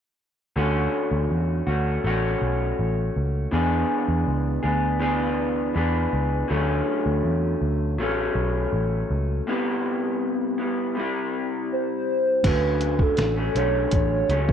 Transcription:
0.56 picked electric bass D2, clean electric guitar D3 A3 C#4 F#4
1.11 picked electric bass D2
1.31 picked electric bass E2
1.67 picked electric bass D2, clean electric guitar A3 C#4 F#4
2.04 picked electric bass A1, clean electric guitar A3 C#4 F#4
2.42 picked electric bass B1
2.79 picked electric bass A1
3.16 picked electric bass C#2
3.51 picked electric bass E2, clean electric guitar E3 B3 D4 G#4
4.08 picked electric bass E2
4.27 picked electric bass C#2
4.63 picked electric bass D2, clean electric guitar B3 D4 G#4
5.00 clean electric guitar E3 B3 D4 G#4
5.74 picked electric bass E2, clean electric guitar E3 B3 D4 G#4
6.13 picked electric bass C#2
6.48 picked electric bass D2, clean electric guitar D3 F#3 A3 C#4
7.06 picked electric bass D2
7.24 picked electric bass E2
7.61 picked electric bass D2
7.98 picked electric bass A1, clean electric guitar F#3 A3 C#4
8.35 picked electric bass B1
8.73 picked electric bass A1
9.10 picked electric bass C#2
9.47 clean electric guitar C3 G3 B3 E4
10.58 clean electric guitar G3 B3 E4
10.95 clean electric guitar C3 G3
11.00 clean electric guitar E4
11.72 soft synth lead C5
12.44 picked electric bass D2, clean electric guitar D3 F#3 A3 C#4, soft synth lead B4, kick, closed hi-hat, crash
12.81 closed hi-hat
12.99 soft synth lead A4, kick
13.17 picked electric bass A1, snare, closed hi-hat
13.36 clean electric guitar F#3 A3 C#4
13.54 picked electric bass B1, clean electric guitar D3 F#3 A3 C#4, soft synth lead C#5, closed hi-hat
13.91 picked electric bass A1, soft synth lead C#5, kick, closed hi-hat
14.29 picked electric bass C#2, clean electric guitar F#3 A3 C#4, closed hi-hat
14.49 kick

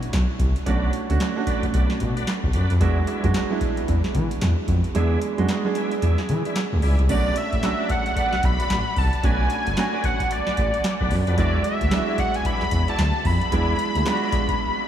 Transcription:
Already playing: grand piano A3 C#4 D4 E4 F#4
0.03 closed hi-hat
0.13 analog synth bass B1, snare, clap, closed hi-hat
0.39 analog synth bass C2, kick, closed hi-hat
0.56 closed hi-hat
0.66 analog synth bass B1, grand piano A3 C#4 D4 F#4, tonewheel organ D4 F#4 A4 B4, kick, closed hi-hat
0.93 closed hi-hat
1.09 analog synth bass D2, grand piano A3 C#4 D4 F#4, closed hi-hat
1.20 snare, clap, closed hi-hat
1.36 grand piano A3 C#4 D4 F#4
1.47 tonewheel organ D4 F#4 A4 B4, kick, closed hi-hat
1.63 kick, closed hi-hat
1.73 analog synth bass B1, tonewheel organ D4 F#4 A4 B4, closed hi-hat
1.90 snare
2.00 analog synth bass B2, kick, closed hi-hat
2.16 tonewheel organ D4 F#4 A4 B4, closed hi-hat
2.27 snare, clap, closed hi-hat
2.44 analog synth bass B1, kick
2.53 analog synth bass F#2, tonewheel organ D4 F#4 A4 B4, closed hi-hat
2.70 analog synth bass F2, closed hi-hat
2.80 analog synth bass E2, grand piano G#3 B3 D4 F#4, tonewheel organ D4 E4 G#4 B4, kick, closed hi-hat
3.07 tonewheel organ D4 E4 G#4 B4, closed hi-hat
3.23 analog synth bass F#2, grand piano G#3 B3 D4 F#4, kick, closed hi-hat
3.34 snare, clap, closed hi-hat
3.50 grand piano G#3 B3 D4 E4
3.61 kick, closed hi-hat
3.77 closed hi-hat
3.88 analog synth bass E2, kick, closed hi-hat
4.04 snare
4.15 analog synth bass E3, kick, closed hi-hat
4.31 closed hi-hat
4.41 analog synth bass E2, snare, clap, closed hi-hat
4.68 analog synth bass F2, kick, closed hi-hat
4.84 closed hi-hat
4.95 analog synth bass E2, grand piano G#3 B3 D4 G#4, tonewheel organ D4 E4 G#4 B4, closed hi-hat
5.22 closed hi-hat
5.38 analog synth bass F#2, grand piano G#3 B3 D4 F#4, closed hi-hat
5.48 snare, clap, closed hi-hat
5.65 grand piano G#3 B3 D4 G#4
5.75 tonewheel organ D4 E4 G#4 B4, closed hi-hat
5.92 closed hi-hat
6.02 analog synth bass E2, tonewheel organ D4 E4 G#4 B4, closed hi-hat
6.18 snare
6.29 analog synth bass E3, closed hi-hat
6.45 tonewheel organ D4 E4 G#4 B4, closed hi-hat
6.56 snare, clap, closed hi-hat
6.72 analog synth bass D2
6.82 analog synth bass C#2, tonewheel organ D4 E4 G#4 B4, open hi-hat
6.99 analog synth bass C2, closed hi-hat
7.09 analog synth bass B1, grand piano A3 C#4 D4 F#4, tonewheel organ D4 F#4 A4 B4, analog synth lead D5, kick, closed hi-hat, crash
7.36 analog synth lead E5, closed hi-hat
7.53 analog synth bass A1, kick, closed hi-hat
7.62 grand piano A3 C#4 D4 F#4, snare, clap, closed hi-hat
7.79 tonewheel organ D4 F#4 A4 B4
7.89 analog synth lead F#5, kick, closed hi-hat
8.06 closed hi-hat
8.16 tonewheel organ D4 F#4 A4 B4, kick, closed hi-hat
8.33 analog synth bass B1, snare
8.43 analog synth bass B1, analog synth lead B5, kick, closed hi-hat
8.59 tonewheel organ D4 F#4 A4 B4, closed hi-hat
8.70 analog synth bass A1, snare, clap, closed hi-hat
8.97 analog synth bass C2, analog synth lead A5, kick, open hi-hat
9.13 closed hi-hat
9.23 analog synth bass B1, grand piano A3 C#4 D4 F#4, tonewheel organ D4 F#4 A4 B4, analog synth lead G#5, kick, closed hi-hat
9.50 closed hi-hat
9.67 analog synth bass F#1, closed hi-hat
9.77 grand piano A3 C#4 D4 F#4, snare, clap, closed hi-hat
9.93 tonewheel organ D4 F#4 A4 B4
10.04 analog synth lead F#5, kick, closed hi-hat
10.20 kick, closed hi-hat
10.31 analog synth lead D5, closed hi-hat
10.47 analog synth bass A1, tonewheel organ D4 F#4 A4 B4, snare
10.57 analog synth bass A1, kick, closed hi-hat
10.74 closed hi-hat
10.84 snare, clap, closed hi-hat
11.00 analog synth bass B1, tonewheel organ D4 F#4 A4 B4, kick
11.11 analog synth bass F#2, open hi-hat
11.27 analog synth bass F2, tonewheel organ D4 F#4 A4 B4, closed hi-hat
11.37 analog synth bass E2, grand piano G#3 B3 D4 F#4, tonewheel organ D4 E4 G#4 B4, analog synth lead D5, kick, closed hi-hat
11.64 analog synth lead E5, closed hi-hat
11.81 analog synth bass D2, kick, closed hi-hat
11.91 grand piano G#3 B3 D4 E4, snare, clap, closed hi-hat
11.98 grand piano F#4
12.07 tonewheel organ D4 E4 G#4 B4
12.18 analog synth lead F#5, kick, closed hi-hat
12.34 analog synth lead G#5, closed hi-hat
12.45 tonewheel organ D4 E4 G#4 B4, analog synth lead B5, kick, closed hi-hat
12.61 analog synth bass E2, snare
12.71 analog synth bass E2, kick, closed hi-hat
12.88 tonewheel organ D4 E4 G#4 B4, analog synth lead A5, closed hi-hat
12.99 analog synth bass D2, snare, clap, closed hi-hat
13.25 analog synth bass F2, analog synth lead B5, kick, open hi-hat
13.41 closed hi-hat
13.52 analog synth bass E2, grand piano G#3 B3 D4 E4, tonewheel organ D4 E4 G#4 B4, kick, closed hi-hat
13.79 closed hi-hat
13.95 analog synth bass D2, closed hi-hat
14.05 grand piano G#3 B3 D4 F4, snare, clap, closed hi-hat
14.13 grand piano F#4
14.22 tonewheel organ D4 E4 G#4 B4
14.32 kick, closed hi-hat
14.49 kick, closed hi-hat

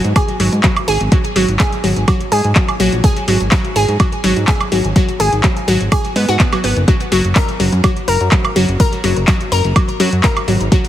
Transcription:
0.04 analog synth bass G#2, closed hi-hat
0.16 synth pluck G#4, kick, closed hi-hat, high woodblock
0.28 closed hi-hat
0.40 analog synth bass G#1, synth pluck F#3, open hi-hat
0.52 analog synth bass G#2, closed hi-hat
0.63 synth pluck F#3, kick, clap, closed hi-hat
0.76 closed hi-hat, high woodblock
0.88 analog synth bass G#1, synth pluck G#4, open hi-hat
1.00 analog synth bass G#1, closed hi-hat
1.12 synth pluck F#3, kick, closed hi-hat
1.24 closed hi-hat
1.36 analog synth bass G#1, synth pluck F#3, open hi-hat
1.48 analog synth bass G#1, closed hi-hat
1.59 synth pluck G#4, kick, clap, closed hi-hat
1.72 closed hi-hat
1.84 analog synth bass G#1, synth pluck F#3, open hi-hat
1.96 analog synth bass G#1, closed hi-hat
2.08 synth pluck F#3, kick, closed hi-hat, high woodblock
2.20 closed hi-hat
2.32 analog synth bass G#2, synth pluck G#4, open hi-hat
2.44 analog synth bass G#2, closed hi-hat
2.55 synth pluck F#3, kick, clap, closed hi-hat
2.68 closed hi-hat, high woodblock
2.80 analog synth bass A#1, synth pluck F#3, open hi-hat
2.92 analog synth bass A#1, closed hi-hat
3.04 synth pluck G#4, kick, closed hi-hat
3.16 closed hi-hat
3.28 analog synth bass G#1, synth pluck F#3, open hi-hat
3.40 analog synth bass G#1, closed hi-hat
3.51 synth pluck F#3, kick, clap, closed hi-hat
3.65 closed hi-hat
3.76 analog synth bass G#1, synth pluck G#4, open hi-hat
3.88 analog synth bass G#2, closed hi-hat
4.00 synth pluck F#3, kick, closed hi-hat, high woodblock
4.12 closed hi-hat
4.24 analog synth bass G#1, synth pluck F#3, open hi-hat
4.37 analog synth bass G#2, closed hi-hat
4.47 synth pluck G#4, kick, clap, closed hi-hat
4.61 closed hi-hat, high woodblock
4.72 analog synth bass G#1, synth pluck F#3, open hi-hat
4.85 analog synth bass G#1, closed hi-hat
4.96 synth pluck F#3, kick, closed hi-hat
5.09 closed hi-hat
5.20 analog synth bass G#1, synth pluck G#4, open hi-hat
5.33 analog synth bass G#1, closed hi-hat
5.43 synth pluck F#3, kick, clap, closed hi-hat
5.57 closed hi-hat
5.68 analog synth bass G#1, synth pluck F#3, open hi-hat
5.80 analog synth bass G#1, closed hi-hat
5.92 synth pluck G#4, kick, closed hi-hat, high woodblock
6.05 closed hi-hat
6.16 analog synth bass G#2, synth pluck B3, open hi-hat
6.28 analog synth bass G#2, synth pluck F#4, closed hi-hat
6.39 synth pluck B3, kick, clap, closed hi-hat
6.52 synth pluck F#3, closed hi-hat, high woodblock
6.64 analog synth bass G#1, synth pluck B3, open hi-hat
6.77 analog synth bass F#1, closed hi-hat
6.88 synth pluck F#3, kick, closed hi-hat
7.00 closed hi-hat
7.12 analog synth bass F#1, synth pluck F#3, open hi-hat
7.24 analog synth bass F#1, closed hi-hat
7.35 synth pluck A#4, kick, clap, closed hi-hat
7.49 closed hi-hat
7.60 analog synth bass F#1, synth pluck F#3, open hi-hat
7.72 analog synth bass F#2, closed hi-hat
7.84 synth pluck F#3, kick, closed hi-hat, high woodblock
7.97 closed hi-hat
8.08 analog synth bass F#1, synth pluck A#4, open hi-hat
8.21 analog synth bass F#2, closed hi-hat
8.32 synth pluck F#3, kick, clap, closed hi-hat
8.45 closed hi-hat, high woodblock
8.56 analog synth bass F#1, synth pluck F#3, open hi-hat
8.69 analog synth bass F#1, closed hi-hat
8.80 synth pluck A#4, kick, closed hi-hat
8.93 closed hi-hat
9.04 analog synth bass F#1, synth pluck F#3, open hi-hat
9.16 analog synth bass F#1, closed hi-hat
9.27 synth pluck F#3, kick, clap, closed hi-hat
9.41 closed hi-hat
9.52 analog synth bass F#1, synth pluck A#4, open hi-hat
9.65 analog synth bass F#1, closed hi-hat
9.76 synth pluck F#3, kick, closed hi-hat, high woodblock
9.89 closed hi-hat
10.00 analog synth bass F#2, synth pluck F#3, open hi-hat
10.13 analog synth bass F#2, closed hi-hat
10.23 synth pluck A#4, kick, clap, closed hi-hat
10.37 closed hi-hat, high woodblock
10.48 analog synth bass G#1, synth pluck F#3, open hi-hat
10.61 analog synth bass G#1, closed hi-hat
10.72 synth pluck F#3, kick, closed hi-hat
10.85 closed hi-hat

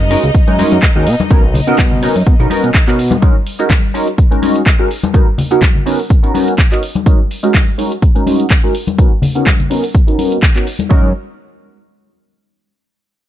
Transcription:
Already playing: analog synth bass F#1, string section D#4 D#5
0.10 analog polysynth G#3 C#4 D#4 F#4 A#4, open hi-hat
0.23 analog synth bass C#2, closed hi-hat, tambourine
0.34 analog synth bass F#2, kick, closed hi-hat, tambourine
0.47 analog synth bass F#2, analog polysynth G#3 C#4 D#4 F#4 A#4, closed hi-hat, tambourine
0.58 analog polysynth G#3 C#4 D#4 F#4 A#4, open hi-hat, high conga
0.72 analog synth bass F#2, closed hi-hat, tambourine
0.82 kick, clap, closed hi-hat, tambourine
0.95 analog synth bass D#2, analog polysynth G#3 C#4 D#4 F#4 A#4, tambourine
1.07 analog synth bass B2, open hi-hat
1.19 closed hi-hat, tambourine, high conga
1.30 analog synth bass B1, analog polysynth B3 C#4 D#4 F#4 A#4, kick, closed hi-hat
1.43 tambourine
1.54 open hi-hat, low conga
1.67 analog synth bass B2, analog polysynth B3 C#4 D#4 F#4 A#4, closed hi-hat, tambourine
1.78 analog synth bass B2, kick, clap, closed hi-hat, tambourine, high conga
1.91 tambourine, low conga
2.02 analog polysynth B3 C#4 D#4 F#4 A#4, open hi-hat
2.16 analog synth bass F#2, open hi-hat, tambourine
2.26 analog synth bass B2, kick, closed hi-hat, tambourine
2.39 analog synth bass B1, analog polysynth B3 C#4 D#4 F#4 A#4, closed hi-hat, tambourine
2.50 analog polysynth B3 C#4 D#4 F#4 A#4, open hi-hat, high conga
2.63 analog synth bass B2, closed hi-hat, tambourine
2.74 kick, clap, closed hi-hat
2.87 analog synth bass B2, analog polysynth B3 C#4 D#4 F#4 A#4, clap, closed hi-hat
2.99 open hi-hat
3.11 closed hi-hat, tambourine, high conga
3.22 analog polysynth G#3 C#4 D#4 F#4 A#4, kick, closed hi-hat, tambourine
3.35 tambourine
3.47 open hi-hat
3.59 analog polysynth G#3 C#4 D#4 F#4 A#4, closed hi-hat, tambourine
3.70 kick, clap, closed hi-hat, tambourine, high conga
3.84 tambourine
3.94 analog polysynth G#3 C#4 D#4 F#4 A#4, open hi-hat
4.07 closed hi-hat, tambourine
4.18 kick, closed hi-hat
4.31 analog polysynth G#3 C#4 D#4 F#4 A#4, closed hi-hat, tambourine
4.42 analog polysynth G#3 C#4 D#4 F#4 A#4, open hi-hat, high conga
4.56 closed hi-hat, tambourine
4.66 kick, clap, closed hi-hat
4.79 analog polysynth G#3 C#4 D#4 F#4 A#4
4.91 open hi-hat
5.03 closed hi-hat, tambourine, high conga
5.13 analog polysynth B3 C#4 D#4 F#4 A#4, kick, closed hi-hat, tambourine
5.27 tambourine
5.38 open hi-hat, low conga
5.51 analog polysynth B3 C#4 D#4 F#4 A#4, closed hi-hat, tambourine
5.62 kick, clap, closed hi-hat, tambourine, high conga
5.75 tambourine, low conga
5.86 analog polysynth B3 C#4 D#4 F#4 A#4, open hi-hat
5.99 open hi-hat, tambourine
6.10 kick, closed hi-hat
6.23 analog polysynth B3 C#4 D#4 F#4 A#4, closed hi-hat
6.34 analog polysynth B3 C#4 D#4 F#4 A#4, open hi-hat, high conga
6.47 closed hi-hat, tambourine
6.58 kick, clap, closed hi-hat
6.71 analog polysynth B3 C#4 D#4 F#4 A#4, clap, tambourine
6.83 open hi-hat
6.95 closed hi-hat, tambourine, high conga
7.06 analog polysynth G#3 C#4 D#4 F#4 A#4, kick, closed hi-hat
7.19 tambourine
7.31 open hi-hat
7.43 analog polysynth G#3 C#4 D#4 F#4 A#4, closed hi-hat
7.54 kick, clap, closed hi-hat, tambourine, high conga
7.68 tambourine
7.78 analog polysynth G#3 C#4 D#4 F#4 A#4, open hi-hat
7.91 closed hi-hat, tambourine
8.02 kick, closed hi-hat, tambourine
8.15 analog polysynth G#3 C#4 D#4 F#4 A#4, closed hi-hat
8.26 analog polysynth G#3 C#4 D#4 F#4 A#4, open hi-hat, high conga
8.40 closed hi-hat, tambourine
8.50 kick, clap, closed hi-hat
8.63 analog polysynth G#3 C#4 D#4 F#4 A#4
8.75 open hi-hat
8.87 closed hi-hat, tambourine, high conga
8.98 analog polysynth B3 C#4 D#4 F#4 A#4, kick, closed hi-hat
9.12 tambourine
9.22 open hi-hat, low conga
9.35 analog polysynth B3 C#4 D#4 F#4 A#4, closed hi-hat, tambourine
9.47 kick, clap, closed hi-hat, tambourine, high conga
9.59 closed hi-hat, tambourine, low conga
9.70 analog polysynth B3 C#4 D#4 F#4 A#4, open hi-hat
9.83 open hi-hat, tambourine
9.95 kick, closed hi-hat
10.07 analog polysynth B3 C#4 D#4 F#4 A#4, closed hi-hat
10.18 analog polysynth B3 C#4 D#4 F#4 A#4, open hi-hat, high conga
10.32 closed hi-hat, tambourine
10.43 kick, clap, closed hi-hat
10.55 analog polysynth B3 C#4 D#4 F#4 A#4, clap
10.67 open hi-hat
10.79 closed hi-hat, tambourine, high conga
10.89 analog synth bass F#2, analog polysynth G#3 C#4 D#4 F#4 A#4, kick

